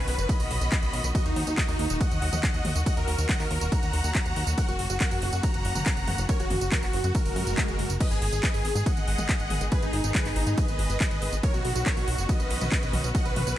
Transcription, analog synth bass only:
0.08 0.16 B1 loud
0.18 0.26 F#1 medium
0.40 0.48 B1 medium
0.51 0.59 B1 loud
0.61 0.69 B1 medium
0.83 0.91 B1 medium
0.93 1.01 B1 loud
1.04 1.12 B1 medium
1.26 1.34 D#2 medium
1.36 1.44 D#2 loud
1.47 1.55 D#2 medium
1.68 1.76 D#2 medium
1.79 1.87 D#2 loud
1.90 1.98 D#1 medium
2.11 2.19 D#2 medium
2.22 2.30 D#2 loud
2.33 2.41 D#2 medium
2.54 2.62 D#2 medium
2.65 2.73 D#2 loud
2.76 2.84 D#2 medium
2.97 3.05 D#2 medium
3.08 3.16 D#2 loud
3.19 3.26 D#2 medium
3.40 3.48 D#2 medium
3.51 3.59 D#2 loud
3.61 3.69 D#1 medium
3.83 3.91 D#2 medium
3.93 4.01 D#2 loud
4.04 4.12 D#2 medium
4.26 4.34 D#2 medium
4.36 4.44 D#2 loud
4.47 4.55 D#2 medium
4.68 4.76 F#1 medium
4.79 4.87 F#1 loud
4.90 4.98 F#1 medium
5.11 5.19 F#1 medium
5.22 5.30 F#1 loud
5.33 5.41 F#2 medium
5.54 5.62 F#1 medium
5.65 5.73 F#1 loud
5.76 5.84 F#1 medium
5.97 6.05 F#1 medium
6.08 6.16 F#1 loud
6.18 6.26 F#1 medium
6.40 6.48 F#1 medium
6.51 6.59 F#1 loud
6.61 6.69 F#1 medium
6.83 6.91 F#1 medium
6.93 7.01 F#1 loud
7.04 7.12 F#2 medium
7.25 7.33 F#1 medium
7.36 7.44 F#2 loud
7.47 7.55 F#1 medium
7.68 7.76 F#1 medium
7.79 7.87 F#1 loud
7.90 7.98 F#1 medium
8.11 8.19 G#1 medium
8.22 8.30 G#1 loud
8.33 8.41 G#1 loud
8.54 8.62 G#1 medium
8.65 8.73 G#1 loud
8.75 8.83 G#2 medium
8.97 9.05 G#1 medium
9.07 9.16 G#1 loud
9.18 9.26 G#1 medium
9.40 9.48 G#1 medium
9.50 9.58 G#1 loud
9.61 9.69 G#1 medium
9.83 9.91 G#1 medium
9.93 10.01 G#1 loud
10.04 10.12 G#1 medium
10.25 10.33 G#1 medium
10.36 10.44 G#1 loud
10.47 10.55 G#2 medium
10.68 10.76 G#1 medium
10.79 10.87 G#1 loud
10.90 10.98 G#1 medium
11.11 11.19 G#1 medium
11.22 11.30 G#1 loud
11.33 11.41 G#1 medium
11.54 11.62 B1 medium
11.65 11.73 B1 loud
11.75 11.83 B1 medium
11.97 12.05 B1 medium
12.08 12.16 B1 loud
12.18 12.26 F#1 medium
12.40 12.48 B1 medium
12.50 12.59 B1 loud
12.61 12.69 B1 medium
12.83 12.91 B1 medium
12.93 13.01 B1 loud
13.04 13.12 B1 medium
13.26 13.34 B1 medium
13.36 13.44 B1 medium
13.47 13.55 B1 medium

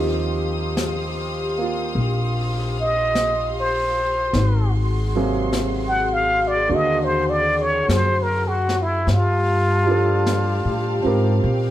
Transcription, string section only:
0.00 4.30 G4 medium
0.00 4.30 F5 soft
0.00 9.02 C6 medium
0.00 4.29 D#6 medium
4.35 9.03 F#4 medium
4.35 9.04 G#4 medium
9.08 11.71 G4 medium
9.08 11.71 F5 medium
9.08 11.42 A5 medium
11.46 11.71 G5 medium

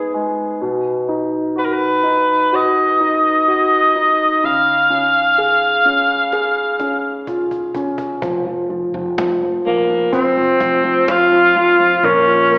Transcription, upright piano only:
0.00 0.56 G#2 soft
0.00 0.14 G#3 soft
0.00 0.58 B3 soft
0.00 0.57 D#4 soft
0.14 0.60 G#3 soft
0.61 4.38 B2 medium
1.08 2.02 D#4 soft
1.56 2.51 F#4 soft
2.03 2.99 D#4 soft
2.52 3.46 F#4 soft
3.00 3.94 D#4 soft
3.48 4.39 F#4 soft
3.95 4.41 D#4 soft
4.43 8.19 C#3 soft
4.90 5.84 C#4 soft
5.38 6.31 G#4 soft
5.85 6.79 C#4 soft
6.33 8.19 G#4 soft
6.80 7.74 C#4 soft
7.28 8.20 F4 soft
7.76 8.22 C#4 soft
8.22 8.45 F3 medium
8.46 8.68 F3 medium
8.69 8.93 F3 medium
8.94 9.17 F3 soft
9.18 9.41 F3 medium
9.43 9.65 F3 soft
9.66 9.88 F3 medium
9.89 10.35 F3 medium
10.12 11.99 C4 medium
10.37 10.59 F3 medium
10.60 10.82 F3 medium
10.84 11.06 F3 medium
11.07 11.30 F3 medium
11.32 11.54 F3 medium
11.56 11.78 F3 medium
11.79 12.03 F3 soft
12.04 12.49 A#3 medium
12.27 12.58 F4 medium
12.50 12.58 A#3 medium

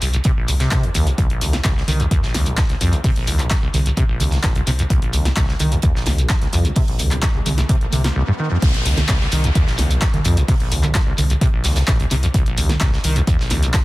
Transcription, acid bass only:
0.02 0.08 C2 medium
0.14 0.17 A#1 medium
0.25 0.32 C3 loud
0.37 0.50 A#1 medium
0.48 0.55 D#2 medium
0.60 0.70 C3 medium
0.72 0.85 C3 loud
0.83 0.90 D#2 medium
0.95 1.08 D#2 loud
1.07 1.10 A#1 medium
1.18 1.28 C2 loud
1.30 1.43 A#1 medium
1.41 1.55 D#2 loud
1.53 1.57 A#1 loud
1.65 1.74 C2 medium
1.76 1.83 C2 medium
1.88 2.01 D#3 medium
2.00 2.06 C2 loud
2.11 2.21 D#2 loud
2.23 2.36 A#1 medium
2.34 2.48 D#2 loud
2.46 2.59 A#1 loud
2.58 2.64 D#2 medium
2.70 2.76 C2 medium
2.81 2.94 F2 loud
2.93 2.99 C2 loud
3.04 3.11 C3 loud
3.16 3.29 A#1 medium
3.28 3.41 D#2 loud
3.39 3.52 A#1 loud
3.51 3.57 C2 loud
3.63 3.69 C2 medium
3.74 3.81 C2 medium
3.86 3.90 A#1 medium
3.97 4.04 C3 loud
4.09 4.22 A#1 medium
4.21 4.34 D#2 loud
4.32 4.39 C2 loud
4.44 4.54 A#1 loud
4.56 4.62 C2 loud
4.67 4.71 C3 loud
4.79 4.83 F2 medium
4.90 5.00 C2 loud
5.02 5.15 A#1 medium
5.13 5.27 D#2 loud
5.25 5.29 A#1 loud
5.37 5.47 C2 loud
5.49 5.55 C2 medium
5.60 5.73 D#3 medium
5.72 5.78 C2 loud
5.83 5.93 D#2 medium
5.95 6.08 A#1 medium
6.06 6.20 D#2 loud
6.18 6.31 A#1 loud
6.30 6.36 D#2 medium
6.42 6.48 C2 medium
6.53 6.66 F2 loud
6.65 6.71 C2 loud
6.76 6.83 C3 loud
6.88 7.01 A#1 medium
6.99 7.13 D#2 loud
7.11 7.24 A#1 loud
7.23 7.29 C2 loud
7.34 7.41 C2 medium
7.46 7.53 C2 medium
7.58 7.62 A#1 medium
7.69 7.76 C3 loud
7.81 7.87 A#1 medium
7.93 8.02 C3 medium
8.04 8.08 C3 medium
8.16 8.22 C2 loud
8.28 8.32 G2 loud
8.39 8.49 D#3 medium
8.51 8.57 F2 medium
8.63 8.72 C2 loud
8.74 8.87 A#1 medium
8.86 8.99 D#2 loud
8.98 9.01 A#1 loud
9.09 9.19 C2 loud
9.21 9.27 C2 medium
9.32 9.46 D#3 medium
9.44 9.50 C2 loud
9.55 9.65 D#2 loud
9.67 9.80 A#1 medium
9.79 9.92 D#2 loud
9.91 10.03 A#1 loud
10.02 10.08 D#2 medium
10.14 10.20 C2 medium
10.25 10.38 F2 loud
10.37 10.43 C2 loud
10.48 10.55 C3 loud
10.60 10.73 A#1 medium
10.72 10.85 D#2 loud
10.83 10.96 A#1 loud
10.95 11.01 C2 loud
11.07 11.13 C2 medium
11.18 11.25 C2 medium
11.30 11.34 A#1 medium
11.41 11.48 C3 loud
11.53 11.66 A#1 medium
11.64 11.78 D#2 medium
11.76 11.83 C2 loud
11.88 11.98 A#1 loud
12.00 12.06 C2 loud
12.11 12.15 C3 loud
12.23 12.27 F2 medium
12.34 12.44 C2 loud
12.46 12.59 A#1 medium
12.58 12.71 D#2 loud
12.69 12.73 A#1 loud
12.81 12.91 C2 medium
12.93 12.99 C2 medium
13.04 13.18 D#3 medium
13.16 13.22 C2 loud
13.27 13.37 D#2 loud
13.39 13.52 A#1 medium
13.51 13.64 D#2 loud
13.63 13.75 A#1 loud
13.74 13.80 D#2 medium

